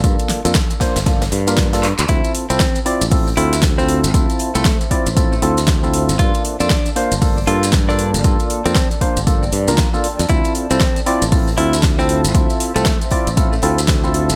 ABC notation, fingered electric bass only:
X:1
M:4/4
L:1/16
Q:"Swing 16ths" 1/4=117
K:Dm
V:1 name="Fingered electric bass" clef=bass
G,, z2 F,, z3 G,,,3 G,,4- G,, D,, | D,, z2 C,, z3 A,,,3 D,,4- D,, A,,, | D,, z2 C,, z3 A,,,3 D,,4- D,, A,,, | G,, z2 F,, z3 G,,,3 G,,4- G,, G,,, |
G,, z2 F,, z3 G,,,3 G,, D,, z3 F,, | D,, z2 C,, z3 A,,,3 D,,4- D,, A,,, | D,, z2 C,, z3 A,,,3 D,,4- D,, A,,, |]